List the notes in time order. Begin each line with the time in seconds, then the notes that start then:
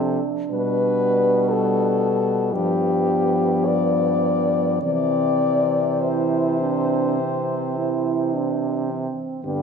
Already playing: C3 F3 D4 A4
0.51 B2 G3 B4
1.51 A4
2.53 G2 F3 B3 G4
3.66 D5
4.82 C3 E3 C4 D5
6.01 E4 C5
6.61 D4
7.20 C4
7.77 E4
8.34 D4
8.90 C4
9.45 G2 D3 B3 G4